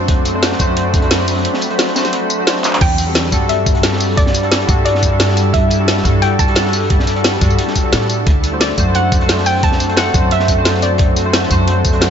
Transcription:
Already playing: F#2 F#3 A3 C4 D4 F#4 C5
0.08 B5, kick, closed hi-hat
0.25 closed hi-hat, tambourine
0.34 A3 D4 F#4 C5
0.43 snare, closed hi-hat
0.52 snare
0.58 F#2 A3 D4 F#4 C5, kick, closed hi-hat, tambourine
0.77 closed hi-hat
0.94 kick, closed hi-hat, tambourine
1.01 A3 D4 F#4 C5, closed hi-hat
1.11 snare, closed hi-hat
1.20 snare
1.28 closed hi-hat, open hi-hat, tambourine
1.45 closed hi-hat
1.54 snare
1.61 closed hi-hat, tambourine
1.70 A3 D4 F#4 C5, closed hi-hat
1.79 snare, closed hi-hat
1.89 closed hi-hat
1.95 A3 D4 F#4 C5, snare, closed hi-hat, tambourine
2.05 snare, tambourine
2.13 closed hi-hat
2.30 closed hi-hat, tambourine
2.38 A3 D4 F#4 C5
2.47 snare, closed hi-hat
2.56 snare
2.64 clap, closed hi-hat, tambourine
2.73 clap
2.81 E2 G3 D4 E4 A4 G5, kick, closed hi-hat, crash
2.98 closed hi-hat, tambourine
3.06 G3 D4 F#4 A4
3.15 snare, closed hi-hat
3.24 snare
3.31 G2 G3 D4 F#4 A4, kick, closed hi-hat, tambourine
3.49 E5, closed hi-hat
3.66 kick, closed hi-hat, tambourine
3.74 G3 D4 F#4 A4, closed hi-hat
3.83 snare, closed hi-hat
3.93 snare
4.00 closed hi-hat, open hi-hat, tambourine
4.17 D5, kick, closed hi-hat
4.26 snare
4.34 closed hi-hat, tambourine
4.43 G3 D4 F#4 A4, closed hi-hat
4.52 snare, closed hi-hat
4.60 closed hi-hat
4.67 G2 G3 D4 F#4 A4, kick, closed hi-hat, tambourine
4.85 D5, closed hi-hat
4.95 snare
5.03 kick, closed hi-hat, tambourine
5.10 G3 D4 F#4 A4
5.20 snare, closed hi-hat
5.28 snare
5.37 closed hi-hat, tambourine
5.53 E5, kick, closed hi-hat
5.71 closed hi-hat, tambourine
5.79 G3 D4 F#4 A4
5.88 snare, closed hi-hat
5.97 snare
6.04 G2 G3 D4 F#4 A4, kick, closed hi-hat, tambourine
6.22 G5, closed hi-hat
6.39 A5, kick, closed hi-hat, tambourine
6.47 G3 D4 F#4 A4, closed hi-hat
6.55 snare, closed hi-hat
6.65 snare
6.73 closed hi-hat, open hi-hat, tambourine
6.90 kick, closed hi-hat
6.99 snare
7.07 closed hi-hat, tambourine
7.16 G3 D4 F#4 A4, closed hi-hat
7.24 snare, closed hi-hat
7.33 closed hi-hat
7.40 G2 G3 D4 F#4 A4, kick, closed hi-hat, tambourine
7.50 tambourine
7.59 closed hi-hat
7.67 snare
7.76 kick, closed hi-hat, tambourine
7.83 G3 D4 F#4 A4
7.93 A2, snare, closed hi-hat
8.01 snare
8.10 closed hi-hat, tambourine
8.27 D2 F#3 C4, kick, closed hi-hat
8.44 closed hi-hat, tambourine
8.52 A3 D4 F#4 C5
8.61 D5, snare, closed hi-hat
8.69 snare
8.77 F#2 A3 D4 F#4 C5, kick, closed hi-hat, tambourine
8.95 F#5, closed hi-hat
9.12 kick, closed hi-hat, tambourine
9.20 A3 D4 F#4 C5, closed hi-hat
9.29 snare, closed hi-hat
9.38 snare
9.46 G5, closed hi-hat, open hi-hat, tambourine
9.63 A5, kick, closed hi-hat
9.72 snare
9.80 closed hi-hat, tambourine
9.88 A3 D4 F#4 C5, closed hi-hat
9.97 F#5, snare, closed hi-hat
10.06 closed hi-hat
10.13 F#2 A3 D4 F#4 C5, kick, closed hi-hat, tambourine
10.31 E5, closed hi-hat
10.39 snare
10.48 kick, closed hi-hat, tambourine
10.56 A3 D4 F#4 C5
10.65 snare, closed hi-hat
10.74 snare
10.82 D5, closed hi-hat, tambourine
10.98 kick, closed hi-hat
11.16 closed hi-hat, tambourine
11.25 A3 D4 F#4 C5
11.33 snare, closed hi-hat
11.43 snare
11.49 F#2 A3 D4 F#4 C5, kick, closed hi-hat, tambourine
11.68 closed hi-hat
11.85 kick, closed hi-hat, tambourine
11.92 A3 D4 F#4 C5, closed hi-hat
12.01 snare, closed hi-hat

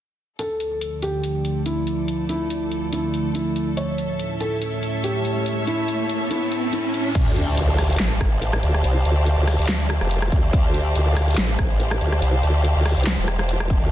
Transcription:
0.39 D2 D3 F3 A3 A4, closed hi-hat
0.51 D5
0.60 closed hi-hat
0.71 A5
0.81 closed hi-hat
1.02 G4, closed hi-hat
1.24 closed hi-hat
1.45 closed hi-hat
1.66 E4, closed hi-hat
1.87 closed hi-hat
2.08 closed hi-hat
2.29 E4, closed hi-hat
2.50 closed hi-hat
2.71 closed hi-hat
2.93 E4, closed hi-hat
3.14 closed hi-hat
3.35 E4, closed hi-hat
3.56 closed hi-hat
3.77 A2 C#4 E4 C#5, closed hi-hat, riser
3.84 E5
3.98 C#5, closed hi-hat
4.19 closed hi-hat
4.41 A4, closed hi-hat
4.62 closed hi-hat
4.83 closed hi-hat
5.04 G4, closed hi-hat
5.25 closed hi-hat
5.46 closed hi-hat
5.67 E4, closed hi-hat
5.88 closed hi-hat
6.09 closed hi-hat
6.31 E4, closed hi-hat
6.52 closed hi-hat
6.73 E4, closed hi-hat
6.94 closed hi-hat
7.15 D2 G4, kick, closed hi-hat, crash, sub drop
7.24 C5
7.36 closed hi-hat
7.55 D2 F5, closed hi-hat
7.78 cross-stick, open hi-hat
7.90 closed hi-hat
7.93 closed hi-hat
7.96 A1, snare, clap, closed hi-hat
8.11 closed hi-hat
8.21 A1, kick, cross-stick, closed hi-hat
8.42 closed hi-hat
8.53 cross-stick
8.63 D2, closed hi-hat
8.74 cross-stick
8.84 C2, closed hi-hat
9.05 D2, closed hi-hat
9.26 closed hi-hat
9.38 D2
9.48 cross-stick, open hi-hat
9.59 D2, closed hi-hat
9.62 closed hi-hat
9.65 snare, clap, closed hi-hat
9.80 closed hi-hat
9.90 cross-stick, closed hi-hat
10.01 F1, cross-stick
10.11 closed hi-hat
10.22 cross-stick
10.32 D2, kick, closed hi-hat
10.53 D2, kick, closed hi-hat
10.74 closed hi-hat
10.95 D2, closed hi-hat
11.17 cross-stick, open hi-hat
11.28 closed hi-hat
11.31 closed hi-hat
11.34 snare, clap, closed hi-hat
11.38 A1, closed hi-hat
11.49 closed hi-hat
11.59 A1, kick, cross-stick, closed hi-hat
11.80 closed hi-hat
11.91 cross-stick
12.01 D2, closed hi-hat
12.12 cross-stick
12.22 C2, closed hi-hat
12.43 D2, closed hi-hat
12.64 closed hi-hat
12.76 D2
12.86 cross-stick, open hi-hat
12.97 C2, closed hi-hat
13.00 closed hi-hat
13.03 snare, clap, closed hi-hat
13.07 closed hi-hat
13.18 E1, closed hi-hat
13.28 cross-stick, closed hi-hat
13.39 cross-stick
13.49 closed hi-hat
13.60 cross-stick
13.70 kick, closed hi-hat
13.81 D2

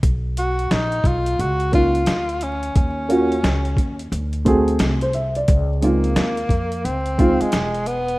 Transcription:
0.03 B1, kick, closed hi-hat
0.37 F#4, closed hi-hat
0.59 closed hi-hat
0.71 A#1 D#4, snare, closed hi-hat
0.92 closed hi-hat
1.04 B1 F4, kick, closed hi-hat
1.26 closed hi-hat
1.39 C#2 F#4, closed hi-hat
1.60 closed hi-hat
1.72 A#3 C#4 D#4 F4, kick, closed hi-hat
1.95 closed hi-hat
2.06 D2, snare, closed hi-hat
2.29 closed hi-hat
2.41 C#4, closed hi-hat
2.63 closed hi-hat
2.76 D#2 C#4, kick, closed hi-hat
3.09 A#3 C#4 F4 F#4, closed hi-hat
3.32 closed hi-hat
3.44 C#2, snare, closed hi-hat
3.65 closed hi-hat
3.76 D#2, kick, closed hi-hat
3.99 closed hi-hat
4.12 D2, closed hi-hat
4.33 closed hi-hat
4.45 A3 C4 F#4 G#4, kick, closed hi-hat
4.68 closed hi-hat
4.79 C2, snare, closed hi-hat
5.01 C5, closed hi-hat
5.13 E5, closed hi-hat
5.35 D5, closed hi-hat
5.48 C#2, kick, closed hi-hat
5.81 G#3 A#3 C4 D#4 F4, closed hi-hat
6.04 closed hi-hat
6.16 D#2, snare, closed hi-hat
6.37 closed hi-hat
6.49 F2, kick, closed hi-hat
6.72 closed hi-hat
6.85 C#2 C4, closed hi-hat
7.06 closed hi-hat
7.18 G#3 C4 D#4 F4, kick, closed hi-hat
7.40 G#3, muted upright bass stroke, closed hi-hat
7.52 E1, snare, closed hi-hat
7.74 closed hi-hat
7.86 B3, closed hi-hat
8.08 closed hi-hat

